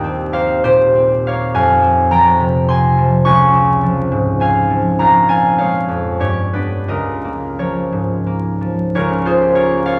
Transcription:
harp
Already playing: D#2 G4 A#4 D#5 F5 G5
0.04 C4
0.33 A#3 C5 F5
0.64 A#2 G4 C5
0.95 C4
1.26 A#3 C#5 F5
1.54 F2 F5 G#5
1.82 C4
2.10 F3 G5 A#5
2.40 C3
2.68 C4 G#5 C6
2.97 F3
3.25 C#2 G#5 C#6
3.53 C4
3.83 F3
4.12 G#2
4.40 C4 F5 G#5
4.70 F3
4.99 A#1 F5 A#5
5.28 C4 F5 G#5
5.58 G#3 C#5 F5
5.88 F2
6.20 G2 G4 C#5
6.53 B3 D4 G4 B4
6.88 C#2 A#4 D#5
7.24 A#3
7.59 F3 A#4 C#5
7.92 G#2
8.26 A#3
8.61 F3
8.95 C#2 A#4 C#5
9.11 C#4
9.25 F4 G#4 C5
9.42 G4
9.55 F4 A#4 C#5
9.71 A#3
9.85 F4 C#5 F5

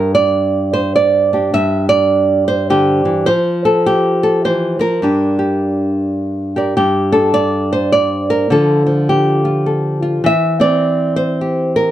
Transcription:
nylon-string guitar
Already playing: G2 A#4
0.15 D5
0.73 C5
0.96 D5
1.33 D4 G4
1.54 G2 E5
1.89 D5
2.48 C5
2.70 D3 G4
3.05 E3
3.26 F3 C5
3.65 A4
3.86 G4
4.23 A4
4.45 E3 C5
4.79 F3 A#4
5.02 G2 D4 G4
5.39 G4
6.56 G4 A#4 D5
6.77 G2 G4
7.12 D4 A4
7.34 D5
7.73 C5
7.92 D5
8.30 A#4
8.50 D3 F3 F4 A4
8.86 F3
9.09 G4
9.45 F4
9.66 A4
10.02 F4
10.24 E3 E5
10.60 C4 D5
11.16 C5
11.41 G4
11.76 A#4

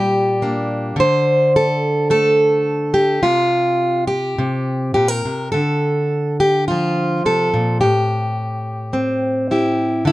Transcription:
steel-string acoustic guitar
Already playing: A#2 G3 G4
0.42 A#3 D4
0.96 D3 C5
1.56 A4
2.10 A3 A4
2.94 G4
3.23 C3 F4
4.07 G4
4.38 C3
4.94 A#2 G4
5.08 A#4
5.25 C3
5.52 D3 A4
6.40 G4
6.68 F3 F4
7.25 C3 A4
7.54 A#2
7.81 A2 G4
8.93 C4
9.51 E4 G4
10.05 D3 E4

